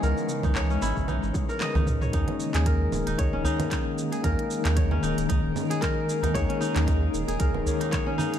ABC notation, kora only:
X:1
M:4/4
L:1/16
Q:"Swing 16ths" 1/4=114
K:none
V:1 name="Kora"
_B z2 _E _d _D _F2 E z2 B _e E z d | _E3 _A _B z2 E _d _D E2 E3 A | _B z2 _E _d _D E2 E3 _A B z2 E | _d _D _E2 E3 _A _B z2 E d D E2 |]